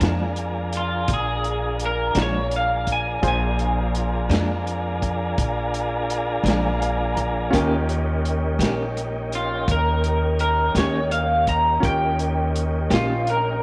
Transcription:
Already playing: upright piano D4 F4 G#4 C6, tonewheel organ D4 F4 G#4 A#4
0.00 upright bass F2, clean electric guitar A#2 F3 G#3 D4, snare, closed hi-hat
0.36 closed hi-hat
0.73 closed hi-hat
0.77 clean electric guitar F4
1.08 upright bass A#1, kick, closed hi-hat
1.14 clean electric guitar G#4
1.44 closed hi-hat
1.80 closed hi-hat
1.86 clean electric guitar A#4
2.15 upright bass A#1, clean electric guitar A#2 F3 G#3 D4, snare, closed hi-hat
2.22 clean electric guitar C#5
2.51 closed hi-hat
2.56 clean electric guitar F5
2.87 kick, closed hi-hat
2.92 clean electric guitar G#5
3.21 upright bass A#1, upright piano D4 F4 G#4 C5, tonewheel organ D4 F4 G#4 A#4, kick, closed hi-hat
3.28 clean electric guitar G#5
3.59 closed hi-hat
3.95 closed hi-hat
4.29 upright bass F2, clean electric guitar A#2 F3 G#3 D4, closed hi-hat
4.33 snare
4.67 closed hi-hat
5.02 kick, closed hi-hat
5.38 upright bass A#1, kick, closed hi-hat
5.74 closed hi-hat
6.10 closed hi-hat
6.43 upright bass A#1, clean electric guitar A#2 F3 G#3 D4, closed hi-hat
6.48 snare
6.79 upright piano F5, closed hi-hat
7.15 upright piano A#5, kick, closed hi-hat
7.50 upright bass D#2, clean electric guitar D#3 A#3 C#4 G4, tonewheel organ A#3 C#4 D#4, upright piano C#4 F4 G4 A#4, kick, closed hi-hat
7.54 tonewheel organ G4
7.89 closed hi-hat
8.25 closed hi-hat
8.59 upright bass A#1, clean electric guitar D#3 A#3 C#4 G4, closed hi-hat
8.63 snare
8.97 closed hi-hat
9.32 clean electric guitar F4, closed hi-hat
9.68 upright bass D#2, clean electric guitar A#4, kick, closed hi-hat
10.04 closed hi-hat
10.39 clean electric guitar A#4, closed hi-hat
10.75 upright bass D#2, clean electric guitar D#3 A#3 C#4 G4 C#5, snare, closed hi-hat
11.11 clean electric guitar F5, closed hi-hat
11.47 clean electric guitar A#5, kick, closed hi-hat
11.80 upright bass D#2, upright piano C#4 F4 G4 A#4, kick, closed hi-hat
11.84 tonewheel organ A#3 C#4 D#4 G4, clean electric guitar G5
12.19 closed hi-hat
12.56 closed hi-hat
12.90 upright bass A#1, clean electric guitar D#3 A#3 C#4 F4 G4, snare, closed hi-hat
13.27 clean electric guitar A#4, closed hi-hat

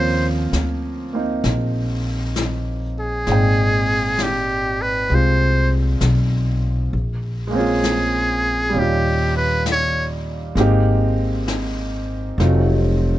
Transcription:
Already playing: upright bass D#2, grand piano F3 A#3 C4 C#4 F4, muted trumpet C5
0.53 upright bass D2, snare, hi-hat pedal
1.13 grand piano A#3 C4 D#4
1.44 upright bass A#1, brush sweep, snare
2.36 snare, hi-hat pedal
3.00 muted trumpet G#4
3.27 upright bass G#1, grand piano A#2 G#3 C4 D#4, brush sweep, snare
3.32 grand piano G5
4.18 snare, hi-hat pedal
4.23 muted trumpet G4
4.82 muted trumpet B4
5.09 upright bass C2, grand piano G#3 C4, brush sweep
5.14 grand piano F4, muted trumpet C5
6.01 upright bass B1, snare, hi-hat pedal
6.92 upright bass A#1, brush sweep
7.47 grand piano G#3 A#3
7.53 grand piano C4 C#4, muted trumpet G#4
7.59 grand piano F4
7.84 snare, hi-hat pedal
8.69 grand piano A#2 G3
8.75 upright bass D#2, grand piano C#4 D#4, brush sweep
8.79 grand piano F4, muted trumpet G4
9.37 muted trumpet B4
9.66 snare, hi-hat pedal
9.72 muted trumpet C#5
10.55 upright bass G#1, grand piano G#3 A#3 C4 D#4, brush sweep, snare
10.60 grand piano G4
11.48 snare, hi-hat pedal
12.38 upright bass F1, grand piano F#3 A3 C4 D#4 F4, brush sweep, snare

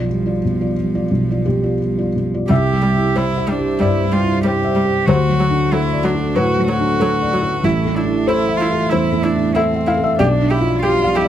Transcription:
Already playing: cello F3, felt piano F4 D5
0.09 felt piano G3
0.26 felt piano F4 D5
0.45 felt piano B2
0.61 felt piano F4 D5
0.79 felt piano G3
0.95 felt piano F4 D5
1.11 felt piano B1
1.31 felt piano F4 D5
1.45 felt piano B2 G4
1.63 felt piano F4 D5
1.81 felt piano G3
1.98 felt piano F4 D5
2.16 felt piano B2
2.34 felt piano F4 D5
2.48 felt piano C2 E5, viola G3, analog synth pad G3 G4 C5, cello G4
2.72 felt piano G3
2.82 viola G3
2.95 felt piano E4
3.16 viola G3, cello E4, felt piano C5
3.38 felt piano E5
3.47 viola G3, cello D4
3.59 felt piano G4
3.79 felt piano G2 D5, viola G3, cello E4
4.03 felt piano G3
4.12 viola G3, cello F4
4.24 felt piano E4
4.43 viola G3, cello G4, felt piano C5
4.65 felt piano E5
4.76 viola G3
4.85 felt piano G4
5.06 felt piano D2 C5, viola F#3, analog synth pad A3 F#4 A4, cello F#4
5.29 felt piano F#3
5.40 viola F#3
5.50 felt piano D4
5.72 viola F#3, cello E4, felt piano A4
5.93 felt piano D5
6.04 viola F#3, cello D4
6.15 felt piano F#4
6.35 felt piano A2 B4, viola F#3, cello F#4
6.59 felt piano F#3
6.68 viola F#3, cello F#4
6.80 felt piano D4
7.00 viola F#3, felt piano A4
7.22 felt piano D5
7.33 viola F#3
7.43 felt piano F#4
7.63 felt piano A1, cello E4, viola E4, analog synth pad E5
7.85 felt piano A3
7.95 cello D4, viola E4
8.04 felt piano E4
8.27 cello E4, viola E4, felt piano A4 C5
8.48 felt piano E5
8.57 viola E4, cello F4
8.72 felt piano A4
8.89 felt piano E2 C5, cello E4, viola E4
9.12 felt piano A3
9.23 cello D4, viola E4
9.35 felt piano E4
9.55 cello C4, viola E4, felt piano A4 E5
9.76 felt piano E5
9.87 viola E4, felt piano F5
9.97 felt piano A4
10.04 felt piano E5
10.19 felt piano B1 D5, analog synth pad F3 G3 D5, cello D4, viola G4
10.42 felt piano D4
10.50 cello E4, viola G4
10.61 felt piano F4
10.82 cello F4, viola G4, felt piano G4
11.04 felt piano F5
11.15 cello E4, viola G4
11.25 felt piano D5

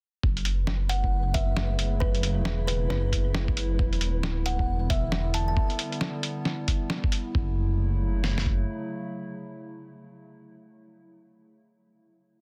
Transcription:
0.23 detuned saw bass F#1, ambient pad C#3 F#3 A3 E4, synth texture B3 B4, kick
0.37 closed hi-hat
0.45 closed hi-hat
0.67 snare
0.89 kalimba F#5, closed hi-hat
1.04 kick
1.34 kalimba E5, kick, closed hi-hat
1.57 snare
1.79 closed hi-hat
2.00 kalimba B4, kick
2.15 closed hi-hat
2.23 closed hi-hat
2.37 detuned saw bass E1
2.45 snare
2.67 kalimba B4, closed hi-hat
2.90 detuned saw bass F#1, kalimba B4, snare
3.13 kick, closed hi-hat
3.35 snare
3.48 kick
3.57 closed hi-hat
3.79 detuned saw bass E1, ambient pad D3 G3 B3, kick
3.93 closed hi-hat
4.01 closed hi-hat
4.15 detuned saw bass D1
4.23 snare
4.46 kalimba F#5, closed hi-hat
4.59 kick
4.68 detuned saw bass E1
4.90 detuned saw bass E1, kalimba E5, kick, closed hi-hat
5.12 snare
5.34 kalimba A5, closed hi-hat
5.48 kalimba A5
5.57 kick
5.70 closed hi-hat
5.79 closed hi-hat
5.92 closed hi-hat
6.01 snare
6.23 closed hi-hat
6.45 snare
6.68 kick, closed hi-hat
6.90 snare
7.04 kick
7.12 closed hi-hat
7.35 detuned saw bass F#1, ambient pad C#3 F#3 A3 E4, kick
8.24 snare
8.38 snare
8.46 kick

